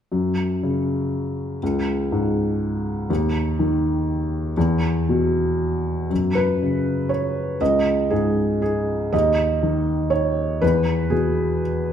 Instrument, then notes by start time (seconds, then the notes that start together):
felt piano
0.12 F#2
0.63 C#3
1.63 C#2
2.12 G#2
3.10 D#2
3.59 D#3
4.57 E2
5.09 B2
6.10 F#2
6.35 B4
6.63 C#3
7.09 C#5
7.61 C#2 D#5
8.10 G#2 G#4
8.62 G#4
9.13 D#2 D#5
9.63 D#3
10.10 C#5
10.62 E2 B4
11.10 B2 G#4